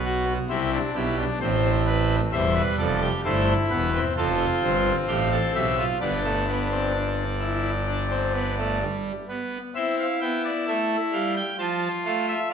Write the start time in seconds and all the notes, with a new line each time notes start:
Already playing: B1 B2 B3
0.05 F#4
0.50 C2 C3 C4 E4
0.74 D4
0.95 B1 B2 E4 G4
1.18 D4
1.41 A1 A2 C4 C5
1.87 B4
2.33 E1 E2 G3 C5 E5
2.55 B4
2.79 F1 F2 A4 D5
3.02 G4
3.25 G1 G2 A3 E4 C5
3.70 E1 E2 B3 B4
3.93 C4
4.17 F1 F2 C4 F4 A4
4.63 G1 G2 C5
5.08 A1 A2 G4 F5
5.32 A4
5.55 B1 B2 G4 E5
5.78 F4
6.01 G1 G2 B3 D4 D5
6.24 A3
6.48 B3
6.71 C4
6.94 D4
7.40 E4
7.87 D4
8.10 C4
8.34 B3
8.58 A3
8.83 G3
9.29 B3
9.75 C4 E4 E5
9.99 F5
10.21 B3 G5
10.45 D5
10.68 A3 E5
11.13 G3 F5
11.36 G5
11.59 F3 F4 A5
12.05 A3 F5
12.28 E5